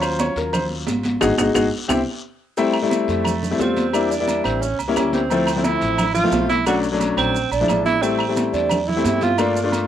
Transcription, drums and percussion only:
0.02 high conga, low agogo, claves, maracas
0.19 high conga, low timbale, low agogo, short guiro, maracas
0.36 high conga, short guiro, maracas
0.53 high conga, low conga, low agogo, long guiro, claves, maracas
0.71 high conga
0.87 high conga, low timbale, low agogo, short guiro, maracas
1.03 high conga, low agogo, short guiro, maracas
1.21 high conga, high timbale, long guiro, claves, maracas
1.38 high conga, high timbale, long guiro, claves, maracas
1.55 high conga, high timbale, long guiro, claves, maracas
1.89 high conga, high timbale, claves, maracas
2.57 high conga, low agogo, long guiro, maracas
2.73 high conga, low agogo, claves
2.90 high conga, low timbale, low agogo, short guiro, maracas
3.08 high conga, short guiro, maracas
3.25 high conga, low conga, low agogo, long guiro, claves, maracas
3.43 high conga, low conga, maracas
3.59 high conga, low timbale, low agogo, short guiro, maracas
3.76 high conga, low agogo, short guiro, maracas
3.93 high conga, low agogo, long guiro, claves, maracas
4.11 high conga, maracas
4.27 high conga, low timbale, low agogo, short guiro, maracas
4.44 high conga, low agogo, short guiro, claves, maracas
4.62 high conga, long guiro, maracas
4.79 high conga, low agogo, maracas
4.96 high conga, low timbale, low agogo, short guiro, claves, maracas
5.13 high conga, short guiro, maracas
5.30 high conga, low agogo, long guiro, maracas
5.47 high conga, low agogo, claves, maracas
5.64 high conga, low timbale, low agogo, short guiro, maracas
5.81 high conga, short guiro, maracas
5.98 high conga, low conga, low agogo, long guiro, claves, maracas
6.15 high conga, low conga, maracas
6.32 high conga, low timbale, low agogo, short guiro, maracas
6.49 high conga, low agogo, short guiro, maracas
6.66 high conga, low agogo, long guiro, claves, maracas
6.84 high conga, maracas
7.00 high conga, low timbale, low agogo, short guiro, maracas
7.17 high conga, low agogo, short guiro, claves, maracas
7.34 high conga, long guiro, maracas
7.51 high conga, low agogo, maracas
7.68 high conga, low timbale, low agogo, short guiro, claves, maracas
7.86 high conga, short guiro, maracas
8.02 low agogo, long guiro, maracas
8.19 high conga, low agogo, claves
8.37 high conga, low timbale, low agogo, short guiro, maracas
8.54 high conga, short guiro, maracas
8.69 high conga, low conga, low agogo, long guiro, claves, maracas
8.89 high conga, low conga
9.04 high conga, low timbale, low agogo, short guiro, maracas
9.21 high conga, low agogo, short guiro, maracas
9.38 low agogo, long guiro, claves, maracas
9.56 high conga, maracas
9.72 high conga, low timbale, low agogo, short guiro, maracas

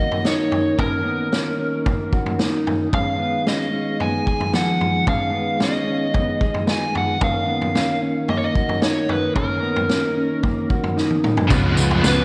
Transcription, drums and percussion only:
0.12 floor tom
0.25 snare
0.52 floor tom
0.79 kick, floor tom
1.33 snare
1.86 kick, floor tom
2.13 kick
2.26 floor tom
2.39 snare
2.67 floor tom
2.93 kick, floor tom
3.47 snare
4.00 floor tom
4.27 kick
4.40 floor tom
4.54 snare
4.81 floor tom
5.07 kick, floor tom
5.60 snare
6.14 kick, floor tom
6.41 kick
6.54 floor tom
6.67 snare
6.95 floor tom
7.21 kick, floor tom
7.62 floor tom
7.75 snare
8.28 floor tom
8.55 kick
8.69 floor tom
8.82 snare
9.09 floor tom
9.36 kick, floor tom
9.76 floor tom
9.89 snare
10.43 kick, floor tom
10.70 kick
10.84 floor tom
10.97 snare
11.10 high tom
11.24 mid tom
11.37 floor tom
11.50 kick, floor tom, tambourine
11.77 tambourine
11.91 floor tom
12.04 snare, tambourine

